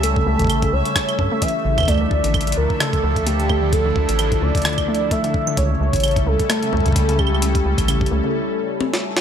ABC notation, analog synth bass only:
X:1
M:4/4
L:1/16
Q:"Swing 16ths" 1/4=130
K:Dm
V:1 name="Analog synth bass" clef=bass
^C,,2 C,, A,,,3 C,, z3 G,, z3 A,,,2 | D,,2 D,, A,,,3 D,, z3 D,,6- | D,,2 D,, A,,,3 D,, z8 z | ^C,,2 C,, A,,,3 C,, z3 C,,6- |
^C,,2 C,, A,,,3 C,, z8 z |]